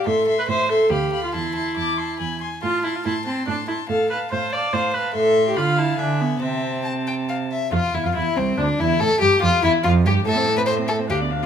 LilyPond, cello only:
\new Staff \with { instrumentName = "Cello" } { \clef bass \time 3/4 \key a \minor \tempo 4 = 142 a,4 a,4 d,4 | e,4 e,4 e,4 | a,4 a,4 a,4 | a,4 a,4 a,4 |
a,4 d4 d4 | c2~ c8 r8 | f,8 e,16 f,16 e,8 c,8 d,8 e,8 | a,8 g,8 f,8 e,8 f,8 g,8 |
a,2 d,4 | }